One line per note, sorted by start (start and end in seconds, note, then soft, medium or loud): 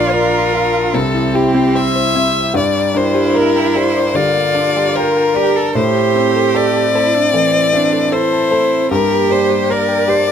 0.00 0.90 A#1 medium
0.00 0.94 D4 medium
0.00 0.37 F4 soft
0.00 0.94 F4 medium
0.00 0.96 F4 medium
0.00 0.94 A#4 medium
0.00 0.15 D5 medium
0.13 0.96 A#4 medium
0.13 0.78 D5 medium
0.13 0.26 D5 medium
0.34 0.46 A#5 medium
0.53 0.65 A#4 medium
0.53 0.95 F5 soft
0.74 0.86 F5 medium
0.94 2.51 C2 medium
0.94 1.06 C4 medium
0.94 2.55 C4 medium
0.94 2.56 E4 medium
0.94 5.76 G4 medium
0.94 1.37 A4 medium
0.94 2.56 C5 medium
1.14 1.26 E4 medium
1.34 1.99 E4 soft
1.34 1.46 G4 medium
1.34 1.78 G4 medium
1.55 1.67 C4 medium
1.75 1.87 C5 medium
1.75 2.39 C5 medium
1.75 2.55 E5 medium
1.96 2.07 C5 medium
2.15 2.28 C4 medium
2.15 2.55 E5 soft
2.54 4.11 G2 medium
2.54 5.76 D4 medium
2.54 2.67 G4 medium
2.54 5.76 A#4 medium
2.54 2.98 D5 medium
2.95 3.59 D4 medium
2.95 4.18 E4 loud
2.95 3.07 A#4 medium
2.95 3.38 C5 medium
3.15 3.27 G4 medium
3.34 3.99 A#4 medium
3.34 3.47 A#4 medium
3.34 3.78 A#4 medium
3.56 3.67 G5 soft
3.74 3.88 G4 medium
3.74 4.16 C5 medium
3.74 4.39 D5 soft
3.96 4.08 D5 medium
4.15 4.79 D3 soft
4.15 5.37 F4 medium
4.15 4.28 G4 medium
4.15 4.97 D5 medium
4.37 4.48 A#4 medium
4.55 5.19 D4 soft
4.55 4.68 D5 medium
4.77 4.88 G4 medium
4.95 5.59 A#4 medium
4.95 5.75 A#4 medium
4.95 5.08 G5 medium
5.17 5.28 G5 medium
5.34 5.58 G4 medium
5.34 5.48 G4 medium
5.34 5.75 D5 medium
5.56 5.77 A4 medium
5.75 7.30 A2 medium
5.75 8.92 C4 medium
5.75 8.92 E4 medium
5.75 6.94 G4 loud
5.75 5.88 A4 medium
5.75 8.92 A4 medium
5.75 6.58 C5 medium
6.15 6.79 C4 medium
6.15 6.28 C5 medium
6.36 6.48 A4 medium
6.55 7.18 A4 medium
6.55 6.68 C5 medium
6.55 8.15 D5 medium
6.76 6.88 A5 medium
6.94 7.16 E4 medium
6.94 7.07 A4 medium
6.94 7.58 C5 soft
7.14 7.34 D4 medium
7.14 7.27 E5 medium
7.33 7.97 E3 soft
7.33 7.75 C4 medium
7.33 7.46 A4 medium
7.54 7.66 C5 medium
7.73 8.36 C4 soft
7.73 8.15 D4 medium
7.73 7.86 E5 medium
7.93 8.05 A4 medium
8.12 8.91 E4 medium
8.12 8.75 A4 medium
8.12 8.91 C5 medium
8.12 8.24 A5 medium
8.33 8.44 A5 medium
8.51 8.64 A4 medium
8.51 8.91 C5 soft
8.90 10.32 G2 medium
8.90 10.32 A#3 medium
8.90 10.32 D4 medium
8.90 10.32 G4 medium
8.90 9.72 G4 medium
8.90 9.03 G4 medium
8.90 9.33 A#4 medium
9.30 9.93 D4 soft
9.30 9.42 A#4 medium
9.30 9.73 C5 medium
9.50 9.62 G4 medium
9.70 10.32 A#4 soft
9.70 9.81 A#4 medium
9.70 10.11 A#4 medium
9.70 10.32 D5 medium
9.89 10.00 G5 medium
10.08 10.20 G4 medium
10.08 10.28 C5 medium
10.08 10.32 D5 soft
10.28 10.32 D5 soft